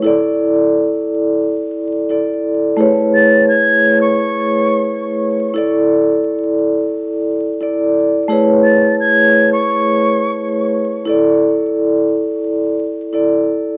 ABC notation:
X:1
M:4/4
L:1/16
Q:"Swing 16ths" 1/4=87
K:Dlyd
V:1 name="Flute"
z16 | z2 a'2 g'3 c'4- c' z4 | z16 | z2 a'2 g'3 c'4- c' z4 |
z16 |]
V:2 name="Vibraphone"
[EAd]12 [EAd]4 | [A,EGBc]16 | [EAd]12 [EAd]4 | [A,EGBc]16 |
[EAd]12 [EAd]4 |]